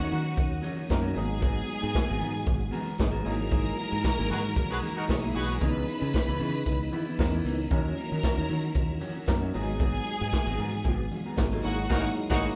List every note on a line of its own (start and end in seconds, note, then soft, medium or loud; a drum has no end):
0.00 0.10 D#2 medium
0.00 1.15 D#3 medium
0.00 0.18 F#3 medium
0.00 0.19 A#3 medium
0.00 0.19 C#4 medium
0.00 1.15 C#4 medium
0.00 0.12 D#4 medium
0.00 0.19 D#4 medium
0.00 0.87 F#4 loud
0.00 3.22 F#4 medium
0.00 0.19 A#4 loud
0.00 0.87 F#5 loud
0.11 0.34 D#3 loud
0.11 0.25 F#3 medium
0.11 0.25 C#4 medium
0.11 0.25 F#4 medium
0.11 open hi-hat medium
0.11 muted conga medium
0.25 muted clean electric guitar stroke soft
0.36 0.60 D#2 loud
0.36 muted clean electric guitar stroke medium
0.36 kick loud
0.36 closed hi-hat medium
0.36 muted conga medium
0.50 muted clean electric guitar stroke soft
0.62 0.76 F#3 medium
0.62 0.75 C#4 loud
0.62 0.74 F#4 medium
0.62 open hi-hat medium
0.62 low conga medium
0.75 0.86 F#3 medium
0.75 0.87 C#4 medium
0.75 0.88 F#4 medium
0.87 1.13 F#2 medium
0.87 1.15 F#3 medium
0.87 1.16 A#3 medium
0.87 1.17 C#4 medium
0.87 1.16 D#4 medium
0.87 muted clean electric guitar stroke soft
0.87 kick loud
0.87 snare loud
0.87 closed hi-hat medium
0.87 high conga medium
0.92 1.17 A#4 loud
0.92 clap loud
1.02 1.19 F#3 medium
1.02 1.13 C#4 medium
1.02 1.13 F#4 loud
1.13 1.61 G#1 loud
1.13 3.24 B2 medium
1.13 2.02 F#3 medium
1.13 2.02 G#3 medium
1.13 5.57 G#3 medium
1.13 1.23 A#3 medium
1.13 1.28 B3 medium
1.13 2.02 D#4 medium
1.13 1.28 F#4 medium
1.13 1.27 G#4 medium
1.13 2.96 G#4 loud
1.13 2.96 G#5 loud
1.13 open hi-hat medium
1.13 high conga medium
1.17 2.02 G#4 loud
1.23 2.05 B3 medium
1.28 muted clean electric guitar stroke soft
1.40 1.66 B3 medium
1.40 1.66 F#4 loud
1.40 1.66 G#4 loud
1.40 kick loud
1.40 closed hi-hat medium
1.67 muted clean electric guitar stroke soft
1.67 open hi-hat medium
1.67 muted conga medium
1.81 1.93 G#2 loud
1.81 1.92 B3 medium
1.81 1.93 F#4 medium
1.81 1.94 G#4 medium
1.93 muted clean electric guitar stroke soft
1.93 kick loud
1.93 snare loud
1.93 clap loud
1.93 closed hi-hat medium
1.93 high conga medium
2.06 2.20 G#1 loud
2.06 2.18 B3 medium
2.06 2.19 F#4 medium
2.06 2.20 G#4 medium
2.19 2.44 G#2 medium
2.19 2.34 B3 medium
2.19 2.33 F#4 medium
2.19 2.32 A#4 medium
2.19 open hi-hat medium
2.19 muted conga medium
2.19 low conga medium
2.33 muted clean electric guitar stroke medium
2.44 2.69 G#1 loud
2.44 muted clean electric guitar stroke medium
2.44 kick loud
2.44 closed hi-hat medium
2.44 muted conga medium
2.58 muted clean electric guitar stroke soft
2.71 2.85 B3 medium
2.71 2.85 F#4 medium
2.71 2.84 A#4 loud
2.71 open hi-hat medium
2.71 low conga medium
2.85 2.97 B3 medium
2.85 2.97 F#4 medium
2.85 2.98 A#4 medium
2.98 3.22 G#1 loud
2.98 3.24 F#3 medium
2.98 3.25 G#3 medium
2.98 3.26 B3 medium
2.98 3.25 D#4 medium
2.98 3.26 G#4 loud
2.98 muted clean electric guitar stroke soft
2.98 kick loud
2.98 snare loud
2.98 clap loud
2.98 closed hi-hat medium
2.98 high conga medium
3.11 3.24 B3 medium
3.11 3.25 F#4 medium
3.11 3.25 A#4 medium
3.24 3.70 G#1 loud
3.24 9.50 E3 medium
3.24 4.11 F#3 loud
3.24 3.39 A#3 medium
3.24 5.59 A#3 medium
3.24 4.11 A#3 medium
3.24 3.38 D#4 medium
3.24 4.11 D#4 medium
3.24 4.11 E4 medium
3.24 5.59 F#4 medium
3.24 3.33 F#4 medium
3.24 3.37 G#4 medium
3.24 5.00 A#4 loud
3.24 5.00 A#5 loud
3.24 open hi-hat medium
3.24 high conga medium
3.32 4.14 G#4 loud
3.38 muted clean electric guitar stroke medium
3.50 3.75 A#3 medium
3.50 3.76 D#4 medium
3.50 3.76 G#4 loud
3.50 kick loud
3.50 closed hi-hat medium
3.50 muted conga soft
3.76 muted clean electric guitar stroke medium
3.76 open hi-hat medium
3.76 muted conga medium
3.90 4.03 G#2 medium
3.90 4.02 A#3 medium
3.90 4.02 D#4 medium
3.90 4.03 G#4 medium
4.03 muted clean electric guitar stroke soft
4.03 kick loud
4.03 snare loud
4.03 clap medium
4.03 closed hi-hat medium
4.03 high conga medium
4.16 4.29 G#1 loud
4.16 4.28 A#3 medium
4.16 4.29 D#4 medium
4.16 4.30 G#4 medium
4.29 4.53 G#2 loud
4.29 4.43 A#3 medium
4.29 4.43 D#4 medium
4.29 4.39 F#4 medium
4.29 4.39 G#4 medium
4.29 4.43 A#4 medium
4.29 4.39 B4 medium
4.29 open hi-hat medium
4.29 muted conga medium
4.29 low conga medium
4.43 muted clean electric guitar stroke soft
4.56 4.79 B1 loud
4.56 muted clean electric guitar stroke soft
4.56 kick loud
4.56 closed hi-hat medium
4.56 muted conga medium
4.56 low conga medium
4.69 4.78 F#4 medium
4.69 4.78 G#4 loud
4.69 4.78 B4 loud
4.69 muted clean electric guitar stroke medium
4.81 4.96 A#3 medium
4.81 4.96 D#4 medium
4.81 4.95 A#4 loud
4.81 open hi-hat medium
4.81 low conga medium
4.96 5.07 A#3 medium
4.96 5.04 D#4 loud
4.96 5.08 D#4 medium
4.96 5.04 F#4 medium
4.96 5.09 A#4 medium
4.96 5.04 A#4 loud
5.08 5.31 B1 loud
5.08 5.51 F#3 medium
5.08 5.52 A#3 medium
5.08 5.18 C#4 medium
5.08 5.52 D#4 medium
5.08 5.52 E4 medium
5.08 5.52 G#4 loud
5.08 5.18 C#5 medium
5.08 muted clean electric guitar stroke soft
5.08 kick loud
5.08 snare loud
5.08 clap loud
5.08 closed hi-hat medium
5.08 high conga medium
5.17 5.26 D#4 medium
5.17 5.26 D#5 medium
5.21 5.33 A#3 medium
5.21 5.33 D#4 medium
5.21 5.35 A#4 medium
5.25 5.35 E4 medium
5.25 5.35 E5 medium
5.34 5.58 B1 medium
5.34 5.48 A#3 medium
5.34 5.47 D#4 medium
5.34 5.44 F#4 medium
5.34 5.52 F#4 loud
5.34 5.52 G#4 loud
5.34 5.46 G#4 medium
5.34 5.52 B4 loud
5.34 5.44 F#5 medium
5.34 open hi-hat medium
5.34 high conga medium
5.43 5.52 G#4 medium
5.43 5.52 G#5 loud
5.43 muted clean electric guitar stroke soft
5.51 5.61 A#4 medium
5.51 5.61 A#5 loud
5.60 5.84 C#2 loud
5.60 5.71 D#3 medium
5.60 6.46 E3 medium
5.60 7.68 B3 medium
5.60 5.85 B3 medium
5.60 6.46 B3 medium
5.60 6.47 C#4 medium
5.60 7.69 D#4 medium
5.60 6.47 D#4 medium
5.60 5.85 D#4 loud
5.60 6.47 G#4 medium
5.60 7.41 B4 loud
5.60 7.41 B5 loud
5.60 kick loud
5.60 closed hi-hat medium
5.71 5.84 E3 medium
5.85 muted clean electric guitar stroke soft
5.85 open hi-hat medium
5.85 muted conga medium
6.00 6.12 C#3 loud
6.00 6.11 E3 medium
6.00 6.12 B3 medium
6.00 6.13 D#4 medium
6.12 muted clean electric guitar stroke soft
6.12 kick loud
6.12 snare loud
6.12 closed hi-hat medium
6.12 high conga medium
6.16 clap loud
6.26 6.38 C#2 medium
6.26 6.38 E3 medium
6.26 6.37 B3 medium
6.26 6.39 D#4 medium
6.39 6.62 C#3 loud
6.39 6.53 E3 medium
6.39 6.52 B3 medium
6.39 6.53 E4 medium
6.39 open hi-hat medium
6.39 muted conga soft
6.39 low conga medium
6.53 muted clean electric guitar stroke soft
6.65 6.89 C#2 loud
6.65 muted clean electric guitar stroke soft
6.65 kick loud
6.65 closed hi-hat medium
6.65 muted conga soft
6.80 muted clean electric guitar stroke soft
6.92 7.07 E3 loud
6.92 7.06 B3 medium
6.92 7.06 E4 loud
6.92 open hi-hat medium
6.92 low conga medium
7.07 7.18 E3 soft
7.07 7.18 B3 medium
7.07 7.19 E4 medium
7.18 7.41 E2 medium
7.18 7.61 E3 medium
7.18 7.61 B3 medium
7.18 7.62 C#4 medium
7.18 7.62 D#4 medium
7.18 7.62 A#4 loud
7.18 muted clean electric guitar stroke soft
7.18 kick loud
7.18 snare loud
7.18 clap loud
7.18 closed hi-hat medium
7.18 high conga medium
7.32 7.44 E3 medium
7.32 7.45 B3 medium
7.32 7.46 E4 loud
7.44 7.67 C#2 medium
7.44 7.58 E3 medium
7.44 7.59 B3 medium
7.44 7.58 D#4 medium
7.44 open hi-hat medium
7.44 high conga medium
7.59 muted clean electric guitar stroke soft
7.70 7.93 D#2 loud
7.70 7.77 F3 medium
7.70 7.95 F#3 medium
7.70 8.56 A#3 medium
7.70 9.52 C#4 medium
7.70 8.56 C#4 medium
7.70 7.95 C#4 loud
7.70 8.57 D#4 medium
7.70 7.96 D#4 medium
7.70 11.60 F#4 medium
7.70 9.25 A#4 loud
7.70 8.57 A#4 medium
7.70 9.25 A#5 loud
7.70 kick loud
7.70 closed hi-hat medium
7.77 8.59 F#3 medium
7.97 muted clean electric guitar stroke medium
7.97 open hi-hat medium
7.97 muted conga medium
8.11 8.22 D#3 medium
8.11 8.23 F#3 medium
8.11 8.23 C#4 medium
8.11 8.23 D#4 medium
8.23 muted clean electric guitar stroke soft
8.23 kick loud
8.23 snare loud
8.23 clap medium
8.23 closed hi-hat medium
8.23 high conga medium
8.37 8.48 D#2 medium
8.37 8.48 F#3 medium
8.37 8.48 C#4 medium
8.37 8.50 D#4 medium
8.49 8.72 D#3 loud
8.49 8.63 F#3 medium
8.49 8.63 C#4 medium
8.49 8.62 F#4 medium
8.49 open hi-hat medium
8.49 muted conga medium
8.63 muted clean electric guitar stroke medium
8.74 8.98 D#2 loud
8.74 muted clean electric guitar stroke soft
8.74 kick loud
8.74 closed hi-hat medium
8.74 muted conga medium
8.89 muted clean electric guitar stroke soft
9.01 9.15 F#3 medium
9.01 9.14 C#4 medium
9.01 9.13 F#4 loud
9.01 open hi-hat medium
9.01 low conga medium
9.14 9.26 F#3 medium
9.14 9.26 C#4 medium
9.14 9.27 F#4 medium
9.26 9.50 F#2 loud
9.26 9.53 F#3 medium
9.26 9.54 A#3 medium
9.26 9.54 C#4 medium
9.26 9.54 D#4 medium
9.26 9.55 A#4 loud
9.26 muted clean electric guitar stroke soft
9.26 kick loud
9.26 snare loud
9.26 clap loud
9.26 closed hi-hat medium
9.26 high conga medium
9.41 9.58 F#3 medium
9.41 9.54 C#4 medium
9.41 9.53 F#4 medium
9.54 9.99 G#1 medium
9.54 11.62 B2 medium
9.54 10.39 F#3 loud
9.54 10.40 G#3 medium
9.54 12.55 G#3 medium
9.54 9.68 B3 medium
9.54 10.40 B3 medium
9.54 10.40 D#4 medium
9.54 9.68 F#4 medium
9.54 11.34 G#4 loud
9.54 9.67 G#4 medium
9.54 10.40 G#4 loud
9.54 11.34 G#5 loud
9.54 open hi-hat medium
9.54 high conga medium
9.68 muted clean electric guitar stroke soft
9.78 10.04 B3 medium
9.78 10.04 F#4 medium
9.78 10.04 G#4 loud
9.78 kick loud
9.78 closed hi-hat medium
9.78 muted conga soft
10.06 muted clean electric guitar stroke soft
10.06 open hi-hat medium
10.06 muted conga medium
10.19 10.31 G#2 loud
10.19 10.30 B3 soft
10.19 10.31 F#4 medium
10.19 10.31 G#4 medium
10.31 muted clean electric guitar stroke medium
10.31 kick loud
10.31 snare loud
10.31 clap loud
10.31 closed hi-hat medium
10.31 high conga medium
10.46 10.57 G#1 loud
10.46 10.56 B3 medium
10.46 10.57 F#4 medium
10.46 10.59 G#4 medium
10.57 10.81 G#2 loud
10.57 10.72 B3 medium
10.57 10.72 F#4 medium
10.57 10.72 A#4 medium
10.57 open hi-hat medium
10.57 muted conga medium
10.57 low conga medium
10.72 muted clean electric guitar stroke soft
10.84 11.08 G#1 medium
10.84 11.05 B3 loud
10.84 10.98 F#4 loud
10.84 10.97 G#4 medium
10.84 kick loud
10.84 closed hi-hat medium
10.84 muted conga medium
10.98 muted clean electric guitar stroke medium
11.11 muted clean electric guitar stroke soft
11.11 open hi-hat medium
11.11 low conga medium
11.26 11.36 B3 medium
11.26 11.36 F#4 medium
11.26 11.38 A#4 medium
11.36 11.60 G#1 loud
11.36 11.63 F#3 medium
11.36 11.64 G#3 medium
11.36 11.64 B3 medium
11.36 11.63 D#4 medium
11.36 11.64 F#4 loud
11.36 muted clean electric guitar stroke soft
11.36 kick loud
11.36 snare loud
11.36 clap loud
11.36 closed hi-hat medium
11.36 high conga medium
11.52 11.64 B3 medium
11.52 11.64 F#4 medium
11.52 11.65 A#4 loud
11.63 11.87 G#1 loud
11.63 11.89 F#3 loud
11.63 12.55 A#3 medium
11.63 11.89 A#3 loud
11.63 11.78 A#3 medium
11.63 12.55 D#4 medium
11.63 11.90 D#4 medium
11.63 11.78 D#4 medium
11.63 11.90 E4 loud
11.63 12.55 F#4 medium
11.63 11.89 F#4 loud
11.63 11.90 G#4 loud
11.63 11.77 G#4 medium
11.63 11.89 F#5 loud
11.63 open hi-hat medium
11.63 high conga medium
11.78 muted clean electric guitar stroke soft
11.89 12.08 G#1 loud
11.89 12.08 F#3 loud
11.89 12.08 A#3 medium
11.89 12.03 D#4 loud
11.89 12.09 D#4 loud
11.89 12.09 D#4 medium
11.89 12.09 E4 loud
11.89 12.03 F#4 loud
11.89 12.09 F#4 loud
11.89 12.09 G#4 loud
11.89 12.09 G#4 medium
11.89 12.03 A#4 loud
11.89 12.09 F#5 loud
11.89 kick loud
11.89 snare loud
11.89 crash medium
12.29 12.48 G#1 loud
12.29 12.48 F#3 loud
12.29 12.48 A#3 loud
12.29 12.49 A#3 loud
12.29 12.43 D#4 loud
12.29 12.48 D#4 loud
12.29 12.49 E4 loud
12.29 12.43 F#4 loud
12.29 12.49 F#4 loud
12.29 12.48 G#4 medium
12.29 12.49 G#4 loud
12.29 12.43 A#4 loud
12.29 12.48 F#5 loud
12.29 kick loud
12.29 snare loud